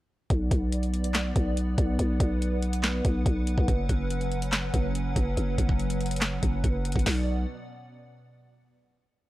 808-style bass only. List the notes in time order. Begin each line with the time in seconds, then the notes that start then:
0.30 B1
0.51 B1
1.36 B1
1.78 B1
1.99 B1
2.20 B1
3.05 B1
3.26 B1
3.58 B1
3.68 F#1
3.89 F#1
4.74 F#1
5.16 F#1
5.37 F#1
5.58 F#1
6.43 F#1
6.64 F#1
6.96 F#1
7.06 B1